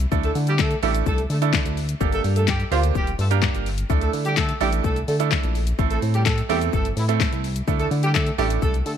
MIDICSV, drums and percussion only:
0, 0, Header, 1, 2, 480
1, 0, Start_track
1, 0, Tempo, 472441
1, 119, Time_signature, 4, 2, 24, 8
1, 9118, End_track
2, 0, Start_track
2, 0, Title_t, "Drums"
2, 0, Note_on_c, 9, 42, 92
2, 0, Note_on_c, 9, 82, 95
2, 100, Note_off_c, 9, 42, 0
2, 100, Note_off_c, 9, 82, 0
2, 119, Note_on_c, 9, 36, 120
2, 119, Note_on_c, 9, 82, 89
2, 221, Note_off_c, 9, 36, 0
2, 221, Note_off_c, 9, 82, 0
2, 238, Note_on_c, 9, 42, 53
2, 238, Note_on_c, 9, 82, 52
2, 340, Note_off_c, 9, 42, 0
2, 340, Note_off_c, 9, 82, 0
2, 359, Note_on_c, 9, 46, 78
2, 359, Note_on_c, 9, 82, 56
2, 460, Note_off_c, 9, 46, 0
2, 460, Note_off_c, 9, 82, 0
2, 478, Note_on_c, 9, 42, 68
2, 478, Note_on_c, 9, 82, 69
2, 579, Note_off_c, 9, 42, 0
2, 579, Note_off_c, 9, 82, 0
2, 596, Note_on_c, 9, 82, 89
2, 598, Note_on_c, 9, 38, 98
2, 600, Note_on_c, 9, 39, 117
2, 601, Note_on_c, 9, 36, 127
2, 697, Note_off_c, 9, 82, 0
2, 699, Note_off_c, 9, 38, 0
2, 701, Note_off_c, 9, 39, 0
2, 703, Note_off_c, 9, 36, 0
2, 717, Note_on_c, 9, 42, 50
2, 717, Note_on_c, 9, 82, 51
2, 818, Note_off_c, 9, 42, 0
2, 818, Note_off_c, 9, 82, 0
2, 839, Note_on_c, 9, 46, 84
2, 839, Note_on_c, 9, 82, 58
2, 941, Note_off_c, 9, 46, 0
2, 941, Note_off_c, 9, 82, 0
2, 960, Note_on_c, 9, 42, 84
2, 960, Note_on_c, 9, 82, 82
2, 1062, Note_off_c, 9, 42, 0
2, 1062, Note_off_c, 9, 82, 0
2, 1078, Note_on_c, 9, 82, 82
2, 1081, Note_on_c, 9, 36, 118
2, 1179, Note_off_c, 9, 82, 0
2, 1182, Note_off_c, 9, 36, 0
2, 1200, Note_on_c, 9, 42, 49
2, 1200, Note_on_c, 9, 82, 50
2, 1302, Note_off_c, 9, 42, 0
2, 1302, Note_off_c, 9, 82, 0
2, 1321, Note_on_c, 9, 46, 83
2, 1321, Note_on_c, 9, 82, 59
2, 1423, Note_off_c, 9, 46, 0
2, 1423, Note_off_c, 9, 82, 0
2, 1442, Note_on_c, 9, 42, 83
2, 1442, Note_on_c, 9, 82, 80
2, 1543, Note_off_c, 9, 42, 0
2, 1543, Note_off_c, 9, 82, 0
2, 1558, Note_on_c, 9, 36, 125
2, 1558, Note_on_c, 9, 38, 99
2, 1560, Note_on_c, 9, 39, 120
2, 1560, Note_on_c, 9, 82, 74
2, 1660, Note_off_c, 9, 36, 0
2, 1660, Note_off_c, 9, 38, 0
2, 1661, Note_off_c, 9, 82, 0
2, 1662, Note_off_c, 9, 39, 0
2, 1682, Note_on_c, 9, 42, 56
2, 1682, Note_on_c, 9, 82, 58
2, 1784, Note_off_c, 9, 42, 0
2, 1784, Note_off_c, 9, 82, 0
2, 1801, Note_on_c, 9, 46, 81
2, 1801, Note_on_c, 9, 82, 59
2, 1902, Note_off_c, 9, 46, 0
2, 1902, Note_off_c, 9, 82, 0
2, 1918, Note_on_c, 9, 42, 91
2, 1918, Note_on_c, 9, 82, 92
2, 2019, Note_off_c, 9, 42, 0
2, 2019, Note_off_c, 9, 82, 0
2, 2039, Note_on_c, 9, 82, 89
2, 2040, Note_on_c, 9, 36, 121
2, 2140, Note_off_c, 9, 82, 0
2, 2141, Note_off_c, 9, 36, 0
2, 2159, Note_on_c, 9, 42, 53
2, 2159, Note_on_c, 9, 82, 55
2, 2260, Note_off_c, 9, 42, 0
2, 2260, Note_off_c, 9, 82, 0
2, 2280, Note_on_c, 9, 46, 77
2, 2280, Note_on_c, 9, 82, 55
2, 2381, Note_off_c, 9, 46, 0
2, 2381, Note_off_c, 9, 82, 0
2, 2399, Note_on_c, 9, 42, 72
2, 2399, Note_on_c, 9, 82, 71
2, 2500, Note_off_c, 9, 42, 0
2, 2500, Note_off_c, 9, 82, 0
2, 2515, Note_on_c, 9, 82, 88
2, 2517, Note_on_c, 9, 38, 95
2, 2519, Note_on_c, 9, 39, 121
2, 2521, Note_on_c, 9, 36, 117
2, 2616, Note_off_c, 9, 82, 0
2, 2618, Note_off_c, 9, 38, 0
2, 2620, Note_off_c, 9, 39, 0
2, 2623, Note_off_c, 9, 36, 0
2, 2639, Note_on_c, 9, 42, 47
2, 2639, Note_on_c, 9, 82, 48
2, 2740, Note_off_c, 9, 42, 0
2, 2740, Note_off_c, 9, 82, 0
2, 2761, Note_on_c, 9, 46, 84
2, 2761, Note_on_c, 9, 82, 57
2, 2862, Note_off_c, 9, 46, 0
2, 2862, Note_off_c, 9, 82, 0
2, 2880, Note_on_c, 9, 42, 80
2, 2880, Note_on_c, 9, 82, 82
2, 2982, Note_off_c, 9, 42, 0
2, 2982, Note_off_c, 9, 82, 0
2, 2997, Note_on_c, 9, 82, 78
2, 3000, Note_on_c, 9, 36, 110
2, 3099, Note_off_c, 9, 82, 0
2, 3102, Note_off_c, 9, 36, 0
2, 3121, Note_on_c, 9, 42, 53
2, 3121, Note_on_c, 9, 82, 49
2, 3223, Note_off_c, 9, 42, 0
2, 3223, Note_off_c, 9, 82, 0
2, 3241, Note_on_c, 9, 46, 81
2, 3241, Note_on_c, 9, 82, 59
2, 3343, Note_off_c, 9, 46, 0
2, 3343, Note_off_c, 9, 82, 0
2, 3362, Note_on_c, 9, 42, 81
2, 3362, Note_on_c, 9, 82, 80
2, 3463, Note_off_c, 9, 42, 0
2, 3463, Note_off_c, 9, 82, 0
2, 3478, Note_on_c, 9, 36, 120
2, 3478, Note_on_c, 9, 38, 96
2, 3480, Note_on_c, 9, 82, 71
2, 3481, Note_on_c, 9, 39, 117
2, 3579, Note_off_c, 9, 36, 0
2, 3580, Note_off_c, 9, 38, 0
2, 3582, Note_off_c, 9, 39, 0
2, 3582, Note_off_c, 9, 82, 0
2, 3602, Note_on_c, 9, 42, 58
2, 3602, Note_on_c, 9, 82, 57
2, 3704, Note_off_c, 9, 42, 0
2, 3704, Note_off_c, 9, 82, 0
2, 3721, Note_on_c, 9, 46, 80
2, 3721, Note_on_c, 9, 82, 61
2, 3823, Note_off_c, 9, 46, 0
2, 3823, Note_off_c, 9, 82, 0
2, 3838, Note_on_c, 9, 42, 92
2, 3838, Note_on_c, 9, 82, 90
2, 3940, Note_off_c, 9, 42, 0
2, 3940, Note_off_c, 9, 82, 0
2, 3960, Note_on_c, 9, 36, 121
2, 3960, Note_on_c, 9, 82, 90
2, 4061, Note_off_c, 9, 36, 0
2, 4061, Note_off_c, 9, 82, 0
2, 4079, Note_on_c, 9, 42, 56
2, 4079, Note_on_c, 9, 82, 54
2, 4180, Note_off_c, 9, 42, 0
2, 4180, Note_off_c, 9, 82, 0
2, 4200, Note_on_c, 9, 46, 80
2, 4200, Note_on_c, 9, 82, 55
2, 4302, Note_off_c, 9, 46, 0
2, 4302, Note_off_c, 9, 82, 0
2, 4318, Note_on_c, 9, 42, 69
2, 4318, Note_on_c, 9, 82, 73
2, 4420, Note_off_c, 9, 42, 0
2, 4420, Note_off_c, 9, 82, 0
2, 4437, Note_on_c, 9, 82, 86
2, 4439, Note_on_c, 9, 38, 98
2, 4441, Note_on_c, 9, 39, 115
2, 4442, Note_on_c, 9, 36, 121
2, 4538, Note_off_c, 9, 82, 0
2, 4540, Note_off_c, 9, 38, 0
2, 4542, Note_off_c, 9, 39, 0
2, 4543, Note_off_c, 9, 36, 0
2, 4558, Note_on_c, 9, 42, 49
2, 4558, Note_on_c, 9, 82, 48
2, 4660, Note_off_c, 9, 42, 0
2, 4660, Note_off_c, 9, 82, 0
2, 4680, Note_on_c, 9, 46, 79
2, 4680, Note_on_c, 9, 82, 59
2, 4782, Note_off_c, 9, 46, 0
2, 4782, Note_off_c, 9, 82, 0
2, 4801, Note_on_c, 9, 42, 86
2, 4801, Note_on_c, 9, 82, 83
2, 4902, Note_off_c, 9, 42, 0
2, 4902, Note_off_c, 9, 82, 0
2, 4918, Note_on_c, 9, 82, 77
2, 4920, Note_on_c, 9, 36, 112
2, 5020, Note_off_c, 9, 82, 0
2, 5022, Note_off_c, 9, 36, 0
2, 5042, Note_on_c, 9, 42, 50
2, 5042, Note_on_c, 9, 82, 51
2, 5144, Note_off_c, 9, 42, 0
2, 5144, Note_off_c, 9, 82, 0
2, 5162, Note_on_c, 9, 46, 84
2, 5162, Note_on_c, 9, 82, 61
2, 5264, Note_off_c, 9, 46, 0
2, 5264, Note_off_c, 9, 82, 0
2, 5282, Note_on_c, 9, 42, 83
2, 5282, Note_on_c, 9, 82, 82
2, 5383, Note_off_c, 9, 42, 0
2, 5383, Note_off_c, 9, 82, 0
2, 5398, Note_on_c, 9, 36, 120
2, 5399, Note_on_c, 9, 38, 94
2, 5401, Note_on_c, 9, 39, 120
2, 5401, Note_on_c, 9, 82, 73
2, 5499, Note_off_c, 9, 36, 0
2, 5501, Note_off_c, 9, 38, 0
2, 5503, Note_off_c, 9, 39, 0
2, 5503, Note_off_c, 9, 82, 0
2, 5522, Note_on_c, 9, 42, 56
2, 5522, Note_on_c, 9, 82, 58
2, 5623, Note_off_c, 9, 42, 0
2, 5623, Note_off_c, 9, 82, 0
2, 5641, Note_on_c, 9, 46, 81
2, 5641, Note_on_c, 9, 82, 58
2, 5742, Note_off_c, 9, 46, 0
2, 5742, Note_off_c, 9, 82, 0
2, 5759, Note_on_c, 9, 42, 92
2, 5759, Note_on_c, 9, 82, 90
2, 5861, Note_off_c, 9, 42, 0
2, 5861, Note_off_c, 9, 82, 0
2, 5880, Note_on_c, 9, 36, 118
2, 5880, Note_on_c, 9, 82, 87
2, 5981, Note_off_c, 9, 36, 0
2, 5982, Note_off_c, 9, 82, 0
2, 5999, Note_on_c, 9, 42, 54
2, 5999, Note_on_c, 9, 82, 56
2, 6101, Note_off_c, 9, 42, 0
2, 6101, Note_off_c, 9, 82, 0
2, 6120, Note_on_c, 9, 46, 77
2, 6120, Note_on_c, 9, 82, 55
2, 6222, Note_off_c, 9, 46, 0
2, 6222, Note_off_c, 9, 82, 0
2, 6239, Note_on_c, 9, 42, 72
2, 6239, Note_on_c, 9, 82, 70
2, 6340, Note_off_c, 9, 42, 0
2, 6340, Note_off_c, 9, 82, 0
2, 6356, Note_on_c, 9, 82, 89
2, 6358, Note_on_c, 9, 38, 98
2, 6360, Note_on_c, 9, 39, 119
2, 6361, Note_on_c, 9, 36, 123
2, 6458, Note_off_c, 9, 82, 0
2, 6460, Note_off_c, 9, 38, 0
2, 6462, Note_off_c, 9, 39, 0
2, 6463, Note_off_c, 9, 36, 0
2, 6479, Note_on_c, 9, 42, 49
2, 6479, Note_on_c, 9, 82, 47
2, 6581, Note_off_c, 9, 42, 0
2, 6581, Note_off_c, 9, 82, 0
2, 6601, Note_on_c, 9, 46, 79
2, 6601, Note_on_c, 9, 82, 59
2, 6702, Note_off_c, 9, 46, 0
2, 6702, Note_off_c, 9, 82, 0
2, 6720, Note_on_c, 9, 42, 85
2, 6720, Note_on_c, 9, 82, 83
2, 6822, Note_off_c, 9, 42, 0
2, 6822, Note_off_c, 9, 82, 0
2, 6837, Note_on_c, 9, 82, 79
2, 6839, Note_on_c, 9, 36, 111
2, 6938, Note_off_c, 9, 82, 0
2, 6941, Note_off_c, 9, 36, 0
2, 6960, Note_on_c, 9, 42, 52
2, 6960, Note_on_c, 9, 82, 50
2, 7062, Note_off_c, 9, 42, 0
2, 7062, Note_off_c, 9, 82, 0
2, 7080, Note_on_c, 9, 46, 88
2, 7080, Note_on_c, 9, 82, 62
2, 7182, Note_off_c, 9, 46, 0
2, 7182, Note_off_c, 9, 82, 0
2, 7202, Note_on_c, 9, 42, 81
2, 7202, Note_on_c, 9, 82, 81
2, 7304, Note_off_c, 9, 42, 0
2, 7304, Note_off_c, 9, 82, 0
2, 7318, Note_on_c, 9, 36, 127
2, 7320, Note_on_c, 9, 38, 94
2, 7322, Note_on_c, 9, 39, 123
2, 7322, Note_on_c, 9, 82, 70
2, 7419, Note_off_c, 9, 36, 0
2, 7422, Note_off_c, 9, 38, 0
2, 7423, Note_off_c, 9, 82, 0
2, 7424, Note_off_c, 9, 39, 0
2, 7443, Note_on_c, 9, 42, 58
2, 7443, Note_on_c, 9, 82, 58
2, 7544, Note_off_c, 9, 42, 0
2, 7544, Note_off_c, 9, 82, 0
2, 7560, Note_on_c, 9, 46, 83
2, 7560, Note_on_c, 9, 82, 58
2, 7662, Note_off_c, 9, 46, 0
2, 7662, Note_off_c, 9, 82, 0
2, 7679, Note_on_c, 9, 42, 90
2, 7679, Note_on_c, 9, 82, 94
2, 7780, Note_off_c, 9, 42, 0
2, 7780, Note_off_c, 9, 82, 0
2, 7799, Note_on_c, 9, 36, 118
2, 7800, Note_on_c, 9, 82, 88
2, 7901, Note_off_c, 9, 36, 0
2, 7901, Note_off_c, 9, 82, 0
2, 7920, Note_on_c, 9, 42, 53
2, 7920, Note_on_c, 9, 82, 56
2, 8022, Note_off_c, 9, 42, 0
2, 8022, Note_off_c, 9, 82, 0
2, 8040, Note_on_c, 9, 46, 74
2, 8040, Note_on_c, 9, 82, 54
2, 8141, Note_off_c, 9, 46, 0
2, 8141, Note_off_c, 9, 82, 0
2, 8158, Note_on_c, 9, 42, 73
2, 8158, Note_on_c, 9, 82, 72
2, 8260, Note_off_c, 9, 42, 0
2, 8260, Note_off_c, 9, 82, 0
2, 8276, Note_on_c, 9, 82, 88
2, 8278, Note_on_c, 9, 38, 96
2, 8280, Note_on_c, 9, 39, 118
2, 8281, Note_on_c, 9, 36, 122
2, 8378, Note_off_c, 9, 82, 0
2, 8380, Note_off_c, 9, 38, 0
2, 8382, Note_off_c, 9, 36, 0
2, 8382, Note_off_c, 9, 39, 0
2, 8397, Note_on_c, 9, 42, 48
2, 8397, Note_on_c, 9, 82, 50
2, 8499, Note_off_c, 9, 42, 0
2, 8499, Note_off_c, 9, 82, 0
2, 8520, Note_on_c, 9, 46, 82
2, 8520, Note_on_c, 9, 82, 57
2, 8621, Note_off_c, 9, 46, 0
2, 8621, Note_off_c, 9, 82, 0
2, 8640, Note_on_c, 9, 42, 88
2, 8640, Note_on_c, 9, 82, 86
2, 8741, Note_off_c, 9, 42, 0
2, 8741, Note_off_c, 9, 82, 0
2, 8758, Note_on_c, 9, 82, 74
2, 8760, Note_on_c, 9, 36, 115
2, 8860, Note_off_c, 9, 82, 0
2, 8862, Note_off_c, 9, 36, 0
2, 8881, Note_on_c, 9, 42, 50
2, 8881, Note_on_c, 9, 82, 51
2, 8983, Note_off_c, 9, 42, 0
2, 8983, Note_off_c, 9, 82, 0
2, 9001, Note_on_c, 9, 46, 81
2, 9001, Note_on_c, 9, 82, 62
2, 9103, Note_off_c, 9, 46, 0
2, 9103, Note_off_c, 9, 82, 0
2, 9118, End_track
0, 0, End_of_file